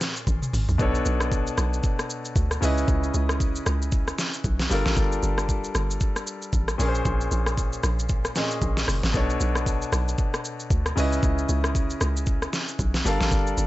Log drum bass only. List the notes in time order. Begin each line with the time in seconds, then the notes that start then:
0.27 A1
0.53 G#1
0.69 A#1
0.80 B1
1.06 B1
1.58 B1
2.36 D2
2.62 C#2
2.88 C#2
3.14 C#2
3.66 C#2
4.44 B1
4.71 G1
4.86 A1
4.97 G1
5.23 G1
5.75 G1
6.53 A1
6.79 A#1
7.05 A#1
7.32 A#1
7.84 A#1
8.62 A#1
8.88 F#1
9.03 G#1
9.14 B1
9.41 B1
9.92 B1
10.70 D2
10.97 C#2
11.23 C#2
11.49 C#2
12.01 C#2
12.79 B1
13.05 G1
13.21 A1
13.32 G1
13.57 G1